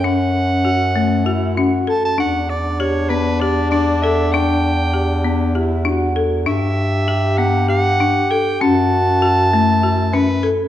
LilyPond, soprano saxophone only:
\new Staff \with { instrumentName = "Soprano saxophone" } { \time 7/8 \key fis \phrygian \tempo 4 = 98 fis''2~ fis''8 r8 a''16 a''16 | fis''8 d''8 cis''8 b'8 d''8 d''8 e''8 | g''2 r4. | e''4. fis''8 fis''4 g''8 |
a''2~ a''8 b'8 r8 | }